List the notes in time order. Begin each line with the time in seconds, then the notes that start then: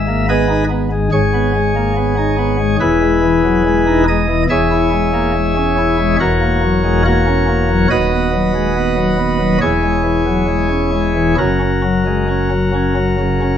Already playing: G#1 G#2 E5
0.08 A#3
0.29 B3 G#4 B4 D#5
0.49 D#4
0.70 B3
0.91 G#3
1.12 G#1 G#2 G#4 C#5
1.34 B3
1.55 G#3
1.76 A#3
1.97 B3
2.17 D#4
2.38 B3
2.60 G#3
2.80 E1 E2 E4 G#4 B4
3.02 G#3
3.22 E3
3.44 F#3
3.66 G#3
3.87 D#4
4.08 G#3 D#5
4.28 E3
4.49 E1 E2 G#4 C#5 E5
4.71 E4
4.92 G#3
5.13 A#3
5.34 G#3
5.56 C#4
5.78 E4
5.99 G#3
6.20 E1 E2 F#4 A#4 C#5
6.41 A#3
6.63 F#3
6.84 G#3
7.05 A#3 F#4 A#4 C#5
7.27 C#4
7.48 A#3
7.69 F#3
7.90 D#1 D#2 F#4 B4 D#5
8.12 B3
8.33 F#3
8.55 G#3
8.77 B3
8.97 F#3
9.18 B3
9.40 F#3
9.61 E1 E2 E4 G#4 C#5
9.83 G#3
10.04 E3
10.26 F#3
10.48 G#3
10.70 C#4
10.92 G#3
11.15 E3
11.38 F#1 F#2 C#4 F#4 A#4
11.61 C#4
11.83 F#3
12.06 G#3
12.29 C#4
12.51 F#3
12.74 C#4
12.97 F#3
13.20 C#3
13.41 C#4